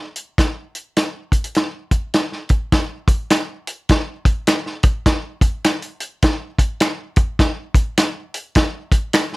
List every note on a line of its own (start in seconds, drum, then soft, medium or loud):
0.16 closed hi-hat medium
0.38 kick loud
0.38 snare medium
0.38 closed hi-hat medium
0.75 closed hi-hat medium
0.96 snare medium
0.96 closed hi-hat medium
1.32 kick medium
1.32 closed hi-hat medium
1.44 closed hi-hat medium
1.55 snare loud
1.55 closed hi-hat medium
1.91 kick medium
1.91 closed hi-hat medium
2.14 snare loud
2.14 closed hi-hat medium
2.32 snare soft
2.49 kick medium
2.49 closed hi-hat medium
2.72 kick loud
2.72 snare loud
2.72 closed hi-hat medium
3.08 kick loud
3.08 closed hi-hat medium
3.30 finger snap medium
3.30 snare loud
3.30 closed hi-hat medium
3.67 closed hi-hat medium
3.89 kick medium
3.89 snare loud
3.89 closed hi-hat medium
4.25 kick medium
4.25 closed hi-hat medium
4.47 finger snap loud
4.47 snare loud
4.47 closed hi-hat medium
4.66 snare soft
4.83 kick loud
4.83 closed hi-hat medium
5.06 kick loud
5.06 snare loud
5.06 closed hi-hat medium
5.41 kick loud
5.41 closed hi-hat medium
5.64 finger snap loud
5.64 snare loud
5.64 closed hi-hat medium
5.82 closed hi-hat soft
6.00 closed hi-hat medium
6.22 kick medium
6.22 snare loud
6.22 closed hi-hat medium
6.59 kick medium
6.59 closed hi-hat medium
6.80 finger snap loud
6.80 snare loud
6.80 closed hi-hat medium
7.16 kick loud
7.16 closed hi-hat medium
7.39 kick loud
7.39 snare loud
7.39 closed hi-hat medium
7.74 kick loud
7.74 closed hi-hat medium
7.97 finger snap medium
7.97 snare loud
7.97 closed hi-hat loud
8.34 closed hi-hat medium
8.55 kick medium
8.55 snare loud
8.55 closed hi-hat medium
8.92 kick medium
8.92 closed hi-hat medium
9.13 finger snap loud
9.13 snare loud
9.13 closed hi-hat loud
9.33 snare soft